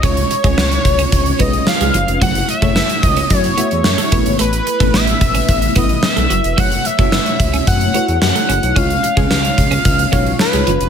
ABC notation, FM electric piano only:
X:1
M:4/4
L:1/16
Q:1/4=110
K:C#m
V:1 name="FM electric piano"
[G,C^Ec]2 z [G,CEc]4- [G,CEc] z2 [G,CEB]4 z2 | [A,EFc]2 z [A,EFc]4- [A,EFc] z2 [A,EFe]4 [A,B,EB]2- | [A,B,EB]2 z [A,B,EB]4- [A,B,EB] z2 [A,B,EB]4 z2 | [A,EFc]2 z [A,EFc]4- [A,EFc] z2 [A,EFc]4 z2 |
[G,C^Ec]2 z [G,CEc]4- [G,CEc] z2 [G,CEc]4 z2 |]